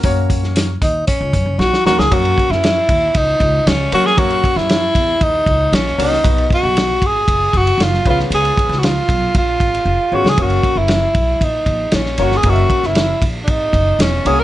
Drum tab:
RD |----------------|xxx-x-x-x-x-x-x-|xxx-x-x-x-x-x-x-|xxx-x-x-x-xxx-x-|
HH |x-x-x-x-x-x-----|----------------|--------------o-|p---------------|
SD |---oo-------oooo|---oo-------o--o|---oo-------oo-o|----o-------oo-o|
BD |o-o---o-o-o-----|o-o---o-o-o-----|o-o---o-o-o-----|o-o---o-o-o---o-|

RD |xxx-x-x-x-xx----|xxx-x-x-x-x-x-x-|xxx-x-x-x-x-x-x-|
HH |----------------|----------------|----------------|
SD |---oo----------o|----o-------oo-o|---oo-------o---|
BD |--o---o-o-o-----|o-o---o-o-o-----|o-o---o-o-o-----|